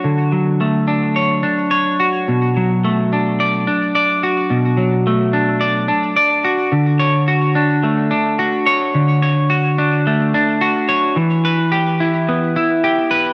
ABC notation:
X:1
M:4/4
L:1/8
Q:1/4=108
K:D
V:1 name="Clean electric guitar"
[D,DFc] F, A, D c D c F | B,, F, A, D d D d F | B,, F, A, D d D d F | D, c F D A, D F c |
D, c F D A, D F c | E, B G E B, E G B |]